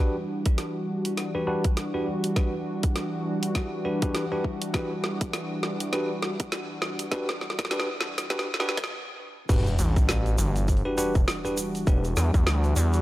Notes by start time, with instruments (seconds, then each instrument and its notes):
0.00 analog synth pad E3 G3 D4 F#4, tine electric piano D4 F#4 G4 B4
0.46 kick, closed hi-hat
0.58 snare, closed hi-hat
1.05 closed hi-hat
1.17 snare, closed hi-hat
1.35 tine electric piano D4 F#4 G4 B4
1.47 tine electric piano D4 F#4 G4 B4
1.64 kick, closed hi-hat
1.77 snare, closed hi-hat
1.94 tine electric piano D4 F#4 G4 B4
2.24 closed hi-hat
2.36 tine electric piano D4 F#4 G4 B4, kick, snare, closed hi-hat
2.83 kick, closed hi-hat
2.96 snare, closed hi-hat
3.43 closed hi-hat
3.55 kick, snare, closed hi-hat
3.85 tine electric piano D4 F#4 G4 B4
4.02 tine electric piano D4 F#4 G4 B4, kick, closed hi-hat
4.15 snare, closed hi-hat
4.32 tine electric piano D4 F#4 G4 B4
4.44 kick
4.62 closed hi-hat
4.74 tine electric piano D4 F#4 G4 B4, kick, snare, closed hi-hat
5.04 snare
5.21 kick, closed hi-hat
5.33 snare, closed hi-hat
5.63 snare
5.80 closed hi-hat
5.93 tine electric piano D4 F#4 G4 B4, snare, closed hi-hat
6.22 snare
6.40 kick, closed hi-hat
6.52 snare, closed hi-hat
6.82 snare
6.99 closed hi-hat
7.12 tine electric piano D4 F#4 G4 B4, kick, snare, closed hi-hat
7.29 snare
7.41 snare
7.50 snare
7.59 kick, snare, closed hi-hat
7.65 snare
7.71 tine electric piano D4 F#4 G4 B4, snare, closed hi-hat
7.80 snare
8.01 snare
8.18 snare, closed hi-hat
8.30 tine electric piano D4 F#4 G4 B4, kick, snare, closed hi-hat
8.39 snare
8.54 snare
8.60 tine electric piano D4 F#4 G4 B4, snare
8.69 snare
8.77 kick, snare, closed hi-hat
8.84 snare
9.49 analog synth bass E1, analog synth pad E3 G3 D4 F#4, tine electric piano D4 F#4 G4 B4, kick, open hi-hat, crash, sub drop, shaker
9.67 open hi-hat, shaker
9.79 analog synth bass A1, open hi-hat, shaker
9.96 kick, open hi-hat, shaker
10.09 snare, open hi-hat, shaker
10.26 open hi-hat, shaker
10.38 analog synth bass G1, open hi-hat, shaker
10.56 open hi-hat, shaker
10.68 kick, open hi-hat, shaker
10.77 open hi-hat
10.85 tine electric piano D4 F#4 G4 B4
10.98 tine electric piano D4 F#4 G4 B4, open hi-hat, shaker
11.15 analog synth bass E1, kick, open hi-hat, shaker
11.28 snare, open hi-hat, shaker
11.45 tine electric piano D4 F#4 G4 B4, open hi-hat, shaker
11.57 open hi-hat, shaker
11.75 open hi-hat, shaker
11.87 analog synth bass E1, tine electric piano D4 F#4 G4 B4, kick, open hi-hat, shaker
12.04 open hi-hat, shaker
12.17 analog synth bass E2, cross-stick, snare, open hi-hat, shaker
12.34 analog synth bass E2, kick, open hi-hat, shaker
12.46 analog synth bass D2, snare, open hi-hat, shaker
12.64 open hi-hat, shaker
12.76 analog synth bass E2, open hi-hat, shaker
12.93 open hi-hat, shaker